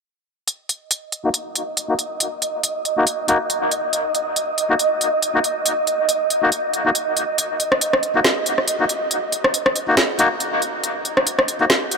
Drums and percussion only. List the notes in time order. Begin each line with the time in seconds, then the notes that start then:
0.48 closed hi-hat
0.69 closed hi-hat
0.91 closed hi-hat
1.12 closed hi-hat
1.34 closed hi-hat
1.55 closed hi-hat
1.77 closed hi-hat
1.99 closed hi-hat
2.20 closed hi-hat
2.42 closed hi-hat
2.63 closed hi-hat
2.85 closed hi-hat
3.07 closed hi-hat
3.28 closed hi-hat
3.50 closed hi-hat
3.71 closed hi-hat
3.93 closed hi-hat
4.15 closed hi-hat
4.36 closed hi-hat
4.58 closed hi-hat
4.79 closed hi-hat
5.01 closed hi-hat
5.22 closed hi-hat
5.44 closed hi-hat
5.66 closed hi-hat
5.87 closed hi-hat
6.09 closed hi-hat
6.30 closed hi-hat
6.52 closed hi-hat
6.74 closed hi-hat
6.95 closed hi-hat
7.17 closed hi-hat
7.38 closed hi-hat
7.60 closed hi-hat
7.72 cross-stick
7.81 closed hi-hat
7.93 cross-stick
8.03 closed hi-hat
8.24 snare, closed hi-hat
8.46 closed hi-hat
8.58 cross-stick
8.68 closed hi-hat
8.89 closed hi-hat
9.11 closed hi-hat
9.32 closed hi-hat
9.44 cross-stick
9.54 closed hi-hat
9.66 cross-stick
9.76 closed hi-hat
9.97 snare, closed hi-hat
10.19 closed hi-hat
10.40 closed hi-hat
10.62 closed hi-hat
10.84 closed hi-hat
11.05 closed hi-hat
11.17 cross-stick
11.27 closed hi-hat
11.39 cross-stick
11.48 closed hi-hat
11.70 snare, closed hi-hat
11.91 closed hi-hat